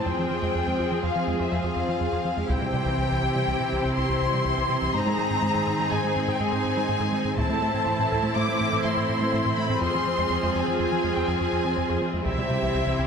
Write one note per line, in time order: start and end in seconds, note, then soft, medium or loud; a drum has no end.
0.00 2.46 C4 soft
0.00 2.46 C5 soft
0.00 2.47 C5 soft
0.05 2.50 F2 soft
0.05 0.14 F2 medium
0.05 2.50 F3 medium
0.05 0.13 F3 medium
0.05 2.46 F4 soft
0.05 2.50 G#4 soft
0.05 2.46 G#4 soft
0.05 1.04 G5 medium
0.18 0.26 F3 medium
0.18 0.25 C4 soft
0.30 0.38 F3 soft
0.30 0.38 C4 soft
0.42 0.50 F2 soft
0.42 0.50 G#3 soft
0.55 0.63 F2 medium
0.55 0.62 F3 medium
0.67 0.75 F2 soft
0.67 0.74 G#3 soft
0.79 0.87 F2 soft
0.79 0.86 F4 soft
0.91 0.99 F3 soft
0.91 0.98 C4 soft
1.03 1.11 F2 medium
1.03 1.10 F3 medium
1.03 1.40 F5 medium
1.16 1.23 F3 medium
1.28 1.35 F2 medium
1.28 1.35 G#3 soft
1.39 1.48 F2 medium
1.39 1.47 F4 soft
1.39 1.53 E5 soft
1.52 1.60 F2 medium
1.52 1.59 F3 medium
1.52 2.50 F5 medium
1.64 1.72 F2 soft
1.64 1.72 F4 medium
1.76 1.84 F2 medium
1.89 1.96 F3 medium
1.89 1.96 C4 soft
2.01 2.08 F2 medium
2.01 2.08 F3 medium
2.13 2.20 F2 soft
2.13 2.20 F4 soft
2.25 2.32 F3 soft
2.37 2.45 F2 soft
2.37 2.45 G#3 soft
2.49 2.57 C2 medium
2.49 2.57 C3 medium
2.49 4.90 C3 soft
2.49 4.94 E3 medium
2.49 7.34 C4 soft
2.49 4.94 E4 soft
2.49 4.94 G4 soft
2.49 4.94 G4 medium
2.49 7.34 C5 medium
2.49 7.34 C5 soft
2.49 3.96 G5 medium
2.49 taiko soft
2.61 2.69 C3 medium
2.61 2.69 G3 soft
2.73 2.81 C3 soft
2.73 2.81 G3 medium
2.86 2.93 C2 medium
2.86 2.93 E3 soft
2.98 3.06 C2 medium
2.98 3.05 C3 medium
3.11 3.19 C2 medium
3.11 3.18 E3 medium
3.23 3.30 C2 medium
3.23 3.30 C4 soft
3.35 3.43 C3 soft
3.35 3.42 G3 soft
3.47 3.55 C2 medium
3.47 3.54 C3 medium
3.61 3.68 C3 medium
3.72 3.80 C2 soft
3.72 3.79 E3 soft
3.83 3.92 C2 soft
3.83 3.91 C4 medium
3.96 4.05 C2 medium
3.96 4.03 C3 medium
3.96 4.92 C6 medium
4.08 4.17 C2 medium
4.08 4.16 C4 medium
4.22 4.29 C2 soft
4.33 4.41 C3 medium
4.33 4.40 G3 soft
4.45 4.53 C2 medium
4.45 4.52 C3 medium
4.57 4.65 C2 soft
4.57 4.65 C4 medium
4.70 4.77 C3 medium
4.81 4.89 C2 medium
4.81 4.89 E3 soft
4.93 7.38 G#2 medium
4.93 5.02 G#2 medium
4.93 7.39 D#3 medium
4.93 5.01 G#3 medium
4.93 7.34 D#4 medium
4.93 7.34 G#4 medium
4.93 7.39 G#4 medium
4.93 5.91 A#5 medium
5.06 5.14 G#3 medium
5.06 5.14 D#4 medium
5.18 5.26 G#3 medium
5.18 5.26 D#4 medium
5.31 5.38 G#2 soft
5.31 5.38 C4 medium
5.42 5.50 G#2 medium
5.42 5.50 G#3 medium
5.55 5.63 G#2 medium
5.55 5.62 C4 soft
5.67 5.75 G#2 medium
5.67 5.74 G#4 medium
5.79 5.87 G#3 soft
5.79 5.87 D#4 medium
5.91 5.99 G#2 medium
5.91 5.99 G#3 medium
5.91 6.28 G#5 medium
6.04 6.11 G#3 medium
6.16 6.24 G#2 medium
6.16 6.23 C4 medium
6.28 6.35 G#2 medium
6.28 6.36 G#4 medium
6.28 6.41 G5 medium
6.40 6.48 G#2 medium
6.40 6.48 G#3 medium
6.40 7.38 G#5 medium
6.52 6.60 G#2 medium
6.52 6.60 G#4 medium
6.65 6.72 G#2 medium
6.77 6.84 G#3 medium
6.77 6.84 D#4 medium
6.89 6.96 G#2 medium
6.89 6.96 G#3 medium
7.00 7.08 G#2 soft
7.00 7.08 G#4 soft
7.13 7.20 G#3 medium
7.25 7.33 G#2 soft
7.25 7.33 C4 soft
7.37 7.44 A2 medium
7.37 9.78 A2 medium
7.37 9.82 E3 medium
7.37 7.45 A3 medium
7.37 12.22 C4 medium
7.37 9.82 E4 medium
7.37 9.79 E4 medium
7.37 9.82 A4 medium
7.37 12.22 C5 soft
7.37 12.22 C5 medium
7.37 8.34 A5 medium
7.37 taiko medium
7.49 7.57 A3 medium
7.49 7.57 E4 soft
7.62 7.69 A3 soft
7.62 7.70 E4 medium
7.74 7.82 A2 medium
7.74 7.82 C4 medium
7.86 7.94 A2 medium
7.86 7.94 A3 medium
7.99 8.07 A2 medium
7.99 8.06 C4 medium
8.12 8.19 A2 soft
8.12 8.19 A4 medium
8.12 taiko soft
8.23 8.31 A3 soft
8.23 8.31 E4 soft
8.36 8.43 A2 medium
8.36 8.43 A3 medium
8.36 8.85 D6 medium
8.49 8.56 A3 medium
8.61 8.68 A2 medium
8.61 8.68 C4 medium
8.72 8.80 A2 medium
8.72 8.80 A4 medium
8.84 8.92 A2 medium
8.84 8.92 A3 medium
8.84 9.58 C6 medium
8.97 9.04 A2 medium
8.97 9.04 A4 medium
9.10 9.17 A2 medium
9.20 9.29 A3 medium
9.20 9.28 E4 soft
9.33 9.41 A2 medium
9.33 9.40 A3 medium
9.45 9.53 A2 soft
9.45 9.53 A4 medium
9.58 9.65 A3 medium
9.58 9.82 B5 medium
9.70 9.77 A2 medium
9.70 9.77 C4 soft
9.82 9.89 F2 medium
9.82 12.22 F2 medium
9.82 9.89 F3 medium
9.82 12.27 F3 medium
9.82 12.22 F4 medium
9.82 12.26 G#4 soft
9.82 12.26 G#4 medium
9.82 10.54 C6 medium
9.94 10.02 F3 medium
9.94 10.01 C4 soft
10.06 10.14 F3 soft
10.06 10.13 C4 soft
10.18 10.26 F2 medium
10.18 10.25 G#3 medium
10.30 10.38 F2 medium
10.30 10.38 F3 medium
10.43 10.51 F2 medium
10.43 10.50 G#3 soft
10.55 10.63 F2 soft
10.55 10.62 F4 soft
10.55 10.78 G#5 medium
10.67 10.75 F3 soft
10.67 10.74 C4 soft
10.79 10.87 F2 medium
10.79 10.87 F3 medium
10.79 11.15 G#5 medium
10.92 10.99 F3 medium
11.03 11.11 F2 soft
11.03 11.11 G#3 soft
11.16 11.24 F2 medium
11.16 11.23 F4 medium
11.16 11.28 G5 medium
11.28 11.36 F2 medium
11.28 11.35 F3 medium
11.28 12.01 G#5 medium
11.40 11.48 F2 medium
11.40 11.48 F4 medium
11.53 11.60 F2 medium
11.65 11.73 F3 medium
11.65 11.72 C4 medium
11.77 11.85 F2 medium
11.77 11.84 F3 medium
11.89 11.97 F2 soft
11.89 11.97 F4 soft
12.02 12.09 F3 soft
12.13 12.21 F2 medium
12.13 12.21 G#3 soft
12.24 12.33 C2 medium
12.24 13.07 C3 soft
12.24 12.33 C3 medium
12.24 13.07 G3 medium
12.24 13.07 C4 soft
12.24 13.07 E4 soft
12.24 13.07 G4 medium
12.24 13.07 G4 soft
12.24 13.07 C5 medium
12.24 13.07 C5 soft
12.24 13.07 E5 medium
12.24 taiko medium
12.38 12.45 C3 medium
12.38 12.45 G3 soft
12.50 12.58 C3 soft
12.50 12.57 G3 medium
12.62 12.70 C2 medium
12.62 12.70 E3 medium
12.75 12.82 C2 medium
12.75 12.82 C3 medium
12.87 12.94 C2 soft
12.87 12.94 E3 soft
12.99 13.06 C2 medium
12.99 13.06 C4 soft